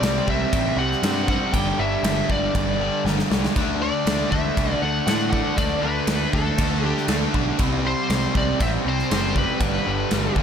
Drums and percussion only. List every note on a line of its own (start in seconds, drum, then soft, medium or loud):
0.03 snare loud
0.03 crash medium
0.28 kick medium
0.53 kick loud
0.53 crash medium
0.92 snare soft
1.03 snare loud
1.03 crash medium
1.28 kick medium
1.54 kick loud
1.54 crash medium
2.04 snare loud
2.04 crash medium
2.30 kick medium
2.55 kick loud
2.55 crash medium
3.06 snare medium
3.19 snare medium
3.32 snare loud
3.45 snare loud
3.56 kick loud
3.56 crash medium
4.07 snare loud
4.07 crash medium
4.32 kick medium
4.57 kick loud
4.57 crash medium
5.07 snare loud
5.07 crash medium
5.33 kick medium
5.58 kick loud
5.58 crash medium
6.07 snare loud
6.07 crash medium
6.33 kick medium
6.58 kick loud
6.58 crash medium
6.97 snare soft
7.08 snare loud
7.08 crash medium
7.34 kick medium
7.59 kick loud
7.59 crash medium
8.10 snare loud
8.10 crash medium
8.35 kick medium
8.60 kick loud
8.60 crash medium
8.99 snare soft
9.11 snare loud
9.11 crash medium
9.36 kick medium
9.61 kick loud
9.61 crash medium
10.11 snare loud
10.11 crash medium
10.36 kick medium